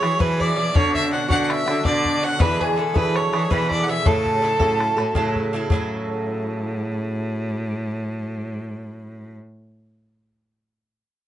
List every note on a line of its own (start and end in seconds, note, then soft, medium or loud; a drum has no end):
0.00 0.18 E3 medium
0.00 0.19 F#3 soft
0.00 0.19 E4 medium
0.00 0.19 G#4 medium
0.00 0.22 C#5 loud
0.00 0.21 C#6 medium
0.00 bodhran medium
0.19 0.55 B2 medium
0.19 0.70 E3 loud
0.19 0.56 F#3 medium
0.19 0.56 E4 medium
0.19 0.57 G#4 medium
0.19 0.42 B4 loud
0.19 0.38 B5 medium
0.19 bodhran medium
0.39 0.77 D5 loud
0.39 0.72 D6 medium
0.39 bodhran soft
0.56 0.73 B2 medium
0.56 0.74 F#3 medium
0.56 0.75 E4 medium
0.56 0.76 G#4 medium
0.74 1.10 B2 medium
0.74 1.12 D3 medium
0.74 1.25 D3 medium
0.74 1.12 C#4 medium
0.74 1.13 F#4 medium
0.74 0.94 C#5 loud
0.74 0.91 C#6 loud
0.74 bodhran medium
0.90 0.96 D6 medium
0.94 1.11 E5 loud
0.94 1.12 E6 medium
0.94 bodhran soft
1.11 1.29 B2 medium
1.11 1.29 D3 medium
1.11 1.28 C#4 medium
1.11 1.27 F#4 medium
1.11 1.29 F#5 medium
1.11 1.29 F#6 loud
1.28 1.68 B2 medium
1.28 1.69 D3 medium
1.28 1.64 D3 medium
1.28 1.67 C#4 medium
1.28 1.65 F#4 medium
1.28 1.41 F#5 loud
1.28 1.51 F#6 medium
1.28 bodhran medium
1.42 1.52 F#5 medium
1.50 1.85 E5 loud
1.50 1.67 E6 loud
1.50 bodhran medium
1.66 1.84 D3 loud
1.66 1.84 D3 soft
1.66 1.86 C#4 soft
1.66 1.85 F#4 medium
1.66 1.86 E6 medium
1.66 bodhran medium
1.85 2.20 B2 medium
1.85 2.21 D3 medium
1.85 2.35 D3 medium
1.85 2.23 F#4 medium
1.85 2.25 D5 loud
1.85 2.22 D6 medium
1.85 bodhran medium
2.05 bodhran soft
2.22 2.38 B2 medium
2.22 2.39 D3 medium
2.22 2.40 C#4 medium
2.22 2.41 F#4 medium
2.22 2.42 F#5 loud
2.22 2.41 F#6 medium
2.39 2.75 B2 medium
2.39 2.76 D3 medium
2.39 2.90 E3 medium
2.39 2.78 E4 medium
2.39 2.78 G#4 medium
2.39 2.62 B4 loud
2.39 2.61 B5 loud
2.39 bodhran medium
2.60 2.79 G#4 loud
2.60 2.97 G#5 medium
2.60 bodhran soft
2.76 2.95 B2 medium
2.76 2.94 D3 medium
2.76 2.94 E4 medium
2.76 2.93 G#4 medium
2.76 2.98 A4 medium
2.94 3.33 B2 medium
2.94 3.33 D3 medium
2.94 3.29 E3 medium
2.94 3.34 E4 medium
2.94 3.31 G#4 medium
2.94 3.17 B4 loud
2.94 3.17 B5 medium
2.94 bodhran loud
3.15 3.52 C#5 loud
3.15 3.50 C#6 medium
3.15 bodhran medium
3.33 3.50 D3 medium
3.33 3.49 E3 loud
3.33 3.51 E4 medium
3.33 3.50 G#4 medium
3.33 bodhran medium
3.50 3.87 B2 medium
3.50 3.88 D3 medium
3.50 4.00 E3 loud
3.50 3.90 E4 medium
3.50 3.89 G#4 medium
3.50 3.70 B4 loud
3.50 3.71 B5 medium
3.50 bodhran medium
3.70 3.85 D5 loud
3.70 3.90 D6 loud
3.70 bodhran soft
3.83 3.91 F#5 medium
3.88 4.05 B2 medium
3.88 4.06 D3 medium
3.88 4.06 E4 medium
3.88 4.07 G#4 medium
3.88 4.08 E5 loud
3.88 4.08 E6 loud
4.05 4.55 A2 medium
4.05 4.41 C#3 medium
4.05 4.43 F#3 medium
4.05 4.44 E4 medium
4.05 5.35 A4 loud
4.05 4.44 A4 medium
4.05 5.36 A5 medium
4.05 bodhran medium
4.26 bodhran soft
4.42 4.60 C#3 medium
4.42 4.60 F#3 medium
4.42 4.59 E4 medium
4.42 4.58 A4 medium
4.60 4.94 A2 medium
4.60 4.99 C#3 medium
4.60 4.99 F#3 medium
4.60 4.98 E4 medium
4.60 4.96 A4 medium
4.60 bodhran medium
4.80 bodhran medium
4.97 5.14 A2 medium
4.97 5.15 F#3 medium
4.97 5.15 E4 medium
4.97 5.15 A4 medium
4.97 bodhran medium
5.15 5.65 A2 loud
5.15 5.52 C#3 medium
5.15 5.54 F#3 loud
5.15 5.55 E4 loud
5.15 5.56 A4 loud
5.15 bodhran medium
5.35 bodhran soft
5.53 5.69 C#3 medium
5.53 5.71 F#3 medium
5.53 5.71 E4 medium
5.53 5.72 A4 medium
5.70 9.35 A2 medium
5.70 9.38 C#3 medium
5.70 9.40 F#3 medium
5.70 9.42 E4 loud
5.70 bodhran medium
5.75 9.44 A4 medium